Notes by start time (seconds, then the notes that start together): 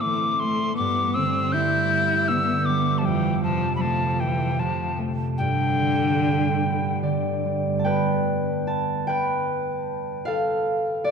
Already playing: A2 A3 C4
0.01 A3 D6
0.05 E3
0.39 A3 C6
0.44 A3
0.76 G2 B3 D6
1.14 D3 C4 E6
1.52 G3 E4 G6
1.93 B3
2.28 D3 B3 E6
2.66 G3 B3 D6
2.98 F3 A5
3.03 E3 G5
3.08 F2
3.43 F3 A5
3.47 C3
3.76 G3 B5
3.80 F3 A3 A5
4.20 E3 C4 G5
4.59 C3 F3 A5
4.99 A3
5.38 G2 D3 G5
5.79 D3
6.19 G3
6.60 B3
7.02 D3 D5
7.45 G3
7.79 A5
7.84 B4 G5
8.67 A5
9.07 B4 G5
10.25 A4 F5
11.04 D5